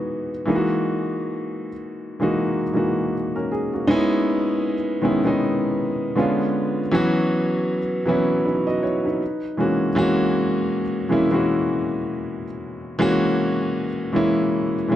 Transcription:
grand piano
Already playing: E3 G#3 B3 D#4 F#4
0.45 E3 G#3 A#3 D#4 E4
0.55 F#4
2.20 E3 G#3 A#3 D#4 F#4
2.74 E3 G#3 A#3 D#4 F#4
3.36 C#4 A#4
3.52 G#4
3.73 A#3 F#4
3.87 G#3 B3 C#4 D#4 E4
5.02 D#3 G#3 B3 C#4 E4
5.24 D#3 G#3 B3 C#4 D#4
6.16 D3 G#3 B3 C#4 F4
6.91 E3 F#3 B3 C#4 F#4
8.05 E3 F#3 B3 C#4 E4
8.45 D#4 B4
8.67 F#4 D#5
8.83 E4 C#5
9.05 D#4 B4
9.57 E3 G#3 A#3 C#4 F#4
9.95 E3 G#3 A#3 C#4 F#4
11.09 E3 G#3 A#3 C#4 E4
11.31 E3 G#3 A#3 C#4 F#4
12.99 E3 G#3 A#3 C#4 F#4
14.13 E3 G#3 A#3 C#4 E4
14.88 E3 G#3 A#3 C#4 E4

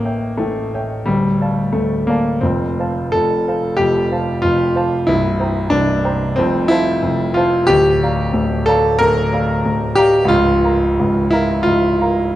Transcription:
grand piano
Already playing: A1 A2 A#3
0.05 C#5 E5 G5
0.37 A1 A2 A3
0.74 C#5 E5 G5
1.06 D1 D2 G3
1.42 D5 F5 A5
1.73 D1 D2 A3
2.07 A#3 D5 F5 A5
2.41 F1 F2 C4
2.79 C5 F5 A5
3.12 F1 F2 A4
3.48 C5 F5 A5
3.77 F1 F2 G4
4.12 C5 F5 A5
4.42 F1 F2 F4
4.76 C5 F5 A5
5.07 C1 C2 E4
5.40 C5 G5 A#5
5.70 C1 C2 D4
6.05 C5 G5 A#5
6.36 F1 F2 C4
6.68 E4 C5 F5 A5
7.02 F1 F2
7.34 F4 C5 F5 A5
7.67 D1 D2 G4
8.03 D5 F5 A#5
8.33 D1 D2
8.66 A4 D5 F5 A#5
8.99 D1 D2 A#4
9.33 D5 F5 A#5
9.65 D1 D2
9.95 G4 D5 F5 A#5
10.25 C#2 F4
10.30 C#1
10.64 A#4 F5 A#5
11.00 C#1 C#2
11.31 E4 A#4 F5 A#5
11.63 C#1 C#2 F4
12.01 A#4 F5 A#5

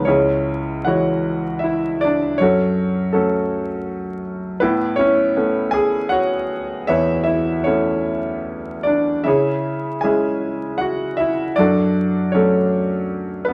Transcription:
grand piano
0.05 C#2 C#4 E4 G#4 C#5
0.84 E3 G#3 E4 F#4 C#5 F#5
1.59 E5
1.64 E4
2.01 D4 D5
2.38 F#2 C#4 C#5
2.42 F#4 A4
3.13 F#3 A3 C#4 A4
4.60 A2 B3 E4 B4
4.96 C#4 E4 C#5
5.36 A3 B3 C#4
5.71 G#4 G#5
6.09 F#4 C#5 F#5
6.87 E2 E4 B4 C#5 E5
7.24 E4 E5
7.64 A3 B3 C#4 E4 C#5
8.83 D4 D5
9.24 C#3 E4 G#4 C#5 E5
10.01 G#3 C#4 E4 G#4 E5 G#5
10.78 F#4 F#5
11.17 E4 E5
11.56 F#2 D4 F#4 A4 D5
12.32 F#3 A3 C#4 C#5
12.36 A4
13.45 B3 B4

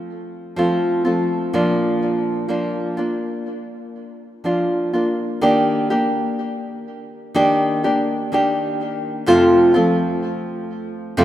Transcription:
nylon-string guitar
Already playing: F3 A3 C4 F4
0.56 F3 A3 C4 F4
1.05 F3 A3 C4 F4
1.53 A#2 F3 A#3 D4 F4
2.48 F3 A#3 D4 F4
2.97 A#3 D4 F4
4.44 F3 A#3 D4 F4
4.93 A#3 D4 F4
5.41 D#3 A#3 D4 G4
5.90 A#3 D4 G4
7.34 D#3 A#3 D4 G4
7.84 A#3 D4 G4
8.32 D#3 A#3 D4 G4
9.26 F2 C3 F3 A3 C4 F4
9.74 F3 A3 C4 F4
11.17 F2 C3 F3 A3 C4 F4

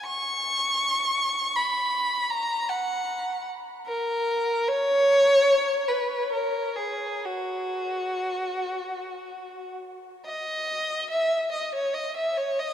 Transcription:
violin
0.05 C#6
1.56 B5
2.30 A#5
2.68 F#5
3.87 A#4
4.68 C#5
5.88 B4
6.31 A#4
6.75 G#4
7.25 F#4
10.26 D#5
11.10 E5
11.52 D#5
11.75 C#5
11.94 D#5
12.16 E5
12.37 C#5
12.59 D#5

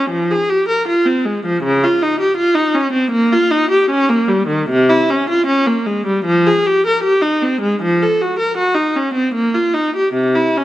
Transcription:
viola
Already playing: C#4
0.10 F3
0.31 G#4
0.50 G4
0.69 A#4
0.88 F4
1.06 C4
1.25 G#3
1.46 F3
1.63 C#3
1.83 F4
2.02 D#4
2.20 G4
2.37 F4
2.55 D#4
2.75 C#4
2.92 C4
3.11 A#3
3.32 F4
3.51 D#4
3.71 G4
3.90 C#4
4.09 A#3
4.28 G3
4.48 D#3
4.70 C3
4.90 E4
5.10 C#4
5.30 F4
5.47 C#4
5.67 A#3
5.86 G#3
6.06 G3
6.25 F3
6.47 G#4
6.67 G4
6.87 A#4
7.03 G4
7.22 D#4
7.42 C4
7.61 G#3
7.82 F3
8.02 A4
8.21 F#4
8.39 A#4
8.57 F#4
8.74 D#4
8.96 C#4
9.14 C4
9.34 A#3
9.54 F4
9.74 D#4
9.96 G4
10.13 C3
10.35 E4
10.58 C#4

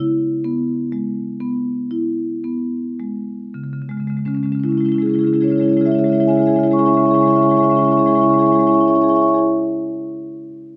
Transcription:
marimba
Already playing: C#3
0.00 E4
0.44 B3
0.92 G#3
1.40 B3
1.91 E4
2.44 B3
3.00 G#3
3.54 C#3
3.64 C#3
3.73 C#3
3.82 C#3
3.89 C#3 G#3
3.98 C#3 G#3
4.08 C#3 G#3
4.17 C#3 G#3
4.25 C#3 G#3 C#4
4.34 C#3 G#3 C#4
4.43 C#3 G#3 C#4
4.52 C#3 G#3 C#4
4.60 G#3 C#4 E4
4.65 C#3 C#4
4.71 G#3 E4
4.75 C#3 C#4 E4
4.81 G#3
4.85 C#3 G#3 C#4 E4
4.92 C#4 E4
4.96 C#3 G#3
5.00 C#4 E4 G#4
5.06 C#3 G#3 C#4 E4
5.11 C#3 E4 G#4
5.16 G#3 C#4 G#4
5.21 C#3 E4
5.25 G#3 C#4 E4 G#4
5.33 C#3 G#3 C#4 E4 G#4
5.41 C#3 G#3 C#4 E4 G#4 C#5
5.48 C#3 G#3 E4 G#4 C#5
5.52 C#4 E4
5.58 G#3 C#4 G#4 C#5
5.62 C#3 E4 G#4 C#5
5.68 C#3 G#3 C#4 E4
5.72 G#4 C#5
5.77 G#3 C#4 E4 C#5
5.81 C#3 E4 G#4
5.85 G#3 C#4 C#5 E5
5.89 C#3 E4 G#4 E5
5.94 G#3 C#4 C#5
5.98 C#3 E4 G#4 C#5 E5
6.04 G#3 C#4 E4 G#4 E5
6.08 C#3 C#4 C#5 E5
6.13 G#3 E4 G#4 C#5
6.18 C#3 G#3 C#4 E4 C#5 E5
6.23 G#4 E5
6.28 C#3 G#3 C#4 E4 G#4 C#5 G#5
6.33 E4 C#5 E5 G#5
6.37 C#3 G#3 C#4 G#4 E5 G#5
6.42 C#4 E4 C#5 E5
6.47 C#3 G#3 E4 G#4 C#5 G#5
6.53 G#3 C#4 E4 G#4 E5 G#5
6.57 C#3 C#5 E5 G#5
6.63 G#3 C#4 E4 G#4 C#5 E5 G#5
6.68 C#3 G#3 C#4 E4 G#4
6.72 C#5 E5 G#5 C#6
6.77 C#3 G#3 C#4 E4 G#4 C#5 E5 G#5 C#6
6.85 C#3 G#3 C#4 E4 G#4 C#5 E5 G#5 C#6
6.91 E4 G#4 C#5 E5 G#5 C#6
6.97 C#3 G#3 C#4 E4 G#5 C#6
7.01 C#4 G#4 C#5 E5 C#6
7.06 C#3 G#3 E4 C#5 E5 G#5 C#6
7.11 C#3 G#3 C#4 E4 G#4 C#5 G#5
7.16 G#4 E5 G#5 C#6
7.21 G#3 C#4 E4 C#5 E5 G#5 C#6
7.25 C#3 E4 G#4 C#5 C#6
7.30 G#3 C#4 E5 G#5 C#6
7.34 C#3 E4 G#4 C#5 E5 G#5
7.38 G#3 C#4 C#5 C#6
7.43 C#3 C#4 E4 G#4 E5 G#5 C#6
7.49 C#3 G#3 E4 G#4 C#5 E5 G#5 C#6
7.55 C#4 E4 C#5 E5 G#5 C#6
7.59 C#3 G#3 C#4 G#4
7.63 E4 C#5 E5 G#5 C#6
7.68 G#3 E4 G#4 C#5 E5 G#5 C#6
7.72 C#3 C#4 G#4 C#6
7.77 G#3 C#4 E4 C#5 E5 G#5
7.81 C#3 E4 G#4 E5 G#5 C#6
7.85 G#3 C#4 C#5 C#6
7.90 C#3 E4 G#4 C#5 E5 G#5 C#6
7.96 C#3 G#3 C#4 E4 G#4 C#5 E5 G#5 C#6
8.02 C#4 E5 G#5 C#6
8.06 C#3 G#3 E4 G#4 C#5 G#5
8.11 C#4 E4 C#5 E5 C#6
8.15 C#3 G#3 G#4 E5 G#5 C#6
8.19 E4 G#4 C#5 G#5 C#6
8.24 G#3 C#4 C#5 E5
8.29 C#3 C#4 E4 G#4 E5 G#5 C#6
8.33 G#3 C#5 G#5 C#6
8.38 C#4 E4 G#4 C#5 E5 G#5 C#6
8.43 G#3 E4 C#5 E5
8.47 C#4 G#4 G#5 C#6
8.52 G#3 E4 G#4 C#5 E5 G#5 C#6
8.59 G#3 C#4 E4 C#5 E5 G#5 C#6
8.63 G#3 E4 G#4 C#5 C#6
8.68 C#4 G#4 E5 G#5
8.73 C#4 E4 C#5 E5 G#5 C#6
8.79 E4 G#4 C#5 E5 G#5 C#6
8.85 C#4 E4 G#4 C#5 G#5 C#6
8.89 E5 C#6
8.94 C#4 E4 G#4 C#5 E5 G#5 C#6
9.01 C#4 E4 G#4 C#5 E5 G#5 C#6
9.08 E4 G#4 C#5 E5 G#5 C#6
9.15 E4 C#5 E5 G#5 C#6
9.19 G#4 C#5 G#5 C#6
9.23 E4 G#4 E5
9.28 E4 C#5 E5 G#5 C#6
9.34 G#4 C#5 E5 G#5 C#6
9.38 E4

